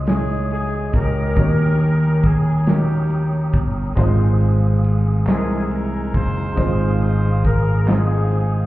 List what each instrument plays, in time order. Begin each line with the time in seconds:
Already playing: fingered electric bass C#2, grand piano C#3 G#3 C#4 D#4 E4 C#5, tonewheel organ C#5 D#5 D#6
0.06 grand piano G#3 C#4 D#4 E4 C#5, horn section G#4, snare, ride
0.51 horn section G#4, ride
0.93 fingered electric bass C#2, horn section C#4 G4 A#4, kick, ride
1.36 fingered electric bass D#2, grand piano D#3 A#3 C#4 D#4 F#4 C#5, tonewheel organ C#5 G5 A#5, kick, ride
1.45 grand piano G4
1.80 ride
2.23 horn section G#4, kick, ride
2.65 grand piano A#3 C#4 D#4 F#4 C#5, snare, ride
2.69 horn section A#3 C#4 G4
2.74 grand piano G4
3.10 ride
3.53 fingered electric bass G1, kick, ride
3.95 fingered electric bass G#1, grand piano G#2 G#3 C4 D#4 F4 C5, tonewheel organ G#4 F5 G#5, kick, ride
4.41 ride
4.84 ride
5.26 fingered electric bass C2, grand piano C3 E3 G#3 C4 A4 D#5, horn section D#4 E4 G#4, tonewheel organ A#5, snare, clap, ride
5.36 grand piano A#4
5.71 horn section A#4, ride
6.14 fingered electric bass F#1, horn section D#4 F4 C5, kick, ride
6.55 fingered electric bass G#1, grand piano G#2 G#3 C4 D#4 F4 C5, tonewheel organ F5 G#5 D#6, kick, ride
7.02 horn section C5, ride
7.45 horn section A#4, kick, ride
7.86 grand piano G#3 C4 D#4 F4 C5, horn section D#4, snare, clap, ride
7.90 horn section C4 G#4
8.32 ride